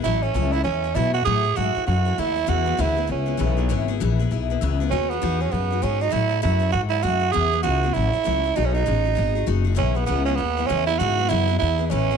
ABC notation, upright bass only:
X:1
M:4/4
L:1/8
Q:"Swing" 1/4=197
K:E
V:1 name="Upright bass" clef=bass
A,,,2 C,,2 E,,2 B,,2 | A,,2 G,, z F,,2 D,,2 | E,,2 =D,,2 C,,2 B,,,2 | G,,,2 ^A,,,2 B,,,2 C,,2 |
D,,2 E,,2 F,,2 G,,2 | A,,2 F,,2 G,,2 F,,2 | E,,2 C,,2 A,,, z C,,2 | B,,,2 A,,,2 G,,,2 F,,,2 |
B,,,2 C,,2 D,,2 E,,2 | G,,2 F,,2 E,,2 A,,,2 |]